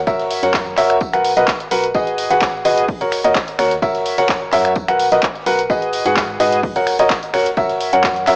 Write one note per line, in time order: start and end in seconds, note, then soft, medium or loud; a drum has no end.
0.07 0.40 F#1 medium
0.07 0.40 F#4 medium
0.07 0.40 A#4 medium
0.07 0.40 C#5 medium
0.07 0.40 E5 medium
0.07 kick loud
0.07 tambourine medium
0.20 snare soft
0.20 closed hi-hat soft
0.31 open hi-hat loud
0.31 tambourine medium
0.43 0.75 F#2 medium
0.43 0.75 F#4 medium
0.43 0.75 A#4 medium
0.43 0.75 C#5 medium
0.43 0.75 F#5 medium
0.43 snare soft
0.43 closed hi-hat medium
0.54 kick loud
0.54 snare loud
0.54 clap loud
0.54 tambourine medium
0.77 1.11 F#1 medium
0.77 0.96 F#4 medium
0.77 0.96 A#4 medium
0.77 0.96 C#5 medium
0.77 0.96 E5 loud
0.77 clap soft
0.77 open hi-hat loud
0.77 tambourine medium
0.90 finger snap medium
0.90 closed hi-hat medium
1.00 kick loud
1.00 tambourine medium
1.13 1.34 B1 medium
1.13 1.31 F#4 medium
1.13 1.31 A#4 medium
1.13 1.31 B4 medium
1.13 1.31 F#5 medium
1.13 finger snap medium
1.13 closed hi-hat medium
1.24 open hi-hat loud
1.24 tambourine medium
1.37 1.45 B1 medium
1.37 1.48 F#4 medium
1.37 1.47 A#4 medium
1.37 1.47 B4 medium
1.37 1.47 D#5 medium
1.37 snare soft
1.37 closed hi-hat medium
1.48 kick loud
1.48 snare loud
1.48 clap loud
1.48 tambourine medium
1.60 closed hi-hat soft
1.71 1.92 B1 medium
1.71 1.83 F#4 medium
1.71 1.83 A#4 medium
1.71 1.83 B4 medium
1.71 1.83 F#5 medium
1.71 open hi-hat loud
1.71 tambourine medium
1.84 closed hi-hat medium
1.94 2.28 G#1 medium
1.94 2.27 F#4 medium
1.94 2.27 G#4 medium
1.94 2.27 B4 medium
1.94 2.27 D#5 medium
1.94 kick loud
1.94 tambourine medium
2.07 closed hi-hat soft
2.18 open hi-hat loud
2.18 tambourine medium
2.30 2.63 G#1 medium
2.30 2.62 F#4 medium
2.30 2.62 G#4 medium
2.30 2.62 B4 medium
2.30 2.62 F#5 medium
2.30 snare soft
2.30 closed hi-hat medium
2.41 kick loud
2.41 snare loud
2.41 clap loud
2.41 tambourine medium
2.65 2.98 G#1 loud
2.65 2.84 F#4 medium
2.65 2.84 G#4 medium
2.65 2.84 B4 medium
2.65 2.84 D#5 loud
2.65 open hi-hat loud
2.65 tambourine medium
2.77 closed hi-hat medium
2.88 kick loud
2.88 open hi-hat medium
3.01 3.22 D#1 loud
3.01 3.19 F#4 medium
3.01 3.19 A#4 medium
3.01 3.19 C#5 medium
3.01 3.19 F#5 medium
3.01 closed hi-hat soft
3.12 finger snap medium
3.12 open hi-hat loud
3.12 tambourine medium
3.24 3.33 D#2 loud
3.24 3.35 F#4 medium
3.24 3.35 A#4 medium
3.24 3.35 C#5 medium
3.24 3.35 D#5 medium
3.24 closed hi-hat medium
3.35 kick loud
3.35 snare loud
3.35 clap loud
3.35 tambourine medium
3.48 closed hi-hat soft
3.59 3.80 D#2 loud
3.59 3.71 F#4 medium
3.59 3.71 A#4 medium
3.59 3.71 C#5 medium
3.59 3.71 F#5 medium
3.59 finger snap medium
3.59 open hi-hat loud
3.59 tambourine medium
3.71 snare soft
3.71 closed hi-hat medium
3.82 4.15 F#1 medium
3.82 4.15 F#4 medium
3.82 4.15 A#4 medium
3.82 4.15 C#5 medium
3.82 4.15 E5 loud
3.82 kick loud
3.82 tambourine medium
3.95 snare soft
3.95 closed hi-hat soft
4.05 open hi-hat loud
4.05 tambourine medium
4.18 4.50 F#1 medium
4.18 4.50 F#4 medium
4.18 4.50 A#4 medium
4.18 4.50 C#5 medium
4.18 4.50 F#5 medium
4.18 snare medium
4.18 closed hi-hat medium
4.29 kick loud
4.29 snare loud
4.29 clap loud
4.29 tambourine medium
4.52 4.86 F#2 medium
4.52 4.71 F#4 medium
4.52 4.71 A#4 medium
4.52 4.71 C#5 medium
4.52 4.71 E5 loud
4.52 clap soft
4.52 open hi-hat loud
4.52 tambourine medium
4.65 finger snap medium
4.65 closed hi-hat medium
4.76 kick loud
4.76 tambourine medium
4.88 5.09 B1 loud
4.88 5.06 F#4 medium
4.88 5.06 A#4 medium
4.88 5.06 B4 medium
4.88 5.06 F#5 medium
4.88 finger snap medium
4.88 closed hi-hat medium
4.99 open hi-hat loud
4.99 tambourine medium
5.12 5.20 B1 loud
5.12 5.23 F#4 medium
5.12 5.23 A#4 medium
5.12 5.23 B4 medium
5.12 5.23 D#5 medium
5.12 snare soft
5.12 closed hi-hat medium
5.23 kick loud
5.23 snare loud
5.23 clap loud
5.23 tambourine medium
5.35 closed hi-hat soft
5.46 5.67 B1 medium
5.46 5.58 F#4 medium
5.46 5.58 A#4 medium
5.46 5.58 B4 medium
5.46 5.58 F#5 loud
5.46 open hi-hat loud
5.46 tambourine medium
5.59 closed hi-hat medium
5.70 6.03 G#1 medium
5.70 6.03 F#4 medium
5.70 6.03 G#4 medium
5.70 6.03 B4 medium
5.70 6.03 D#5 medium
5.70 kick loud
5.70 tambourine medium
5.82 closed hi-hat soft
5.93 open hi-hat loud
5.93 tambourine medium
6.05 6.38 G#2 medium
6.05 6.37 F#4 medium
6.05 6.37 G#4 medium
6.05 6.37 B4 medium
6.05 6.37 F#5 medium
6.05 snare soft
6.05 closed hi-hat medium
6.17 kick loud
6.17 snare loud
6.17 clap loud
6.17 tambourine medium
6.40 6.73 G#2 medium
6.40 6.58 F#4 loud
6.40 6.59 G#4 medium
6.40 6.59 B4 medium
6.40 6.59 D#5 loud
6.40 open hi-hat medium
6.40 tambourine medium
6.52 closed hi-hat medium
6.63 kick loud
6.63 open hi-hat medium
6.76 6.97 D#1 loud
6.76 6.94 F#4 medium
6.76 6.94 A#4 medium
6.76 6.94 C#5 medium
6.76 6.94 F#5 medium
6.76 closed hi-hat medium
6.87 finger snap medium
6.87 open hi-hat loud
6.87 tambourine medium
6.99 7.08 D#1 loud
6.99 7.10 F#4 medium
6.99 7.10 A#4 medium
6.99 7.10 C#5 medium
6.99 7.10 D#5 medium
6.99 closed hi-hat medium
7.10 kick loud
7.10 snare loud
7.10 clap loud
7.10 tambourine loud
7.23 closed hi-hat medium
7.23 closed hi-hat soft
7.34 7.55 D#1 medium
7.34 7.46 F#4 medium
7.34 7.46 A#4 medium
7.34 7.46 C#5 medium
7.34 7.46 F#5 loud
7.34 finger snap medium
7.34 open hi-hat medium
7.34 tambourine medium
7.46 snare soft
7.46 closed hi-hat medium
7.57 7.90 F#1 medium
7.57 7.90 F#4 medium
7.57 7.90 A#4 medium
7.57 7.90 C#5 medium
7.57 7.90 E5 medium
7.57 kick loud
7.57 tambourine medium
7.70 snare soft
7.70 closed hi-hat soft
7.81 open hi-hat loud
7.93 8.25 F#2 medium
7.93 8.25 F#4 medium
7.93 8.25 A#4 medium
7.93 8.25 C#5 medium
7.93 8.25 F#5 medium
7.93 closed hi-hat medium
8.04 kick loud
8.04 snare loud
8.04 clap loud
8.04 tambourine medium
8.16 closed hi-hat soft
8.27 8.36 F#2 loud
8.27 8.36 F#4 loud
8.27 8.36 A#4 medium
8.27 8.36 C#5 medium
8.27 8.36 E5 loud
8.27 clap soft
8.27 open hi-hat loud
8.27 tambourine medium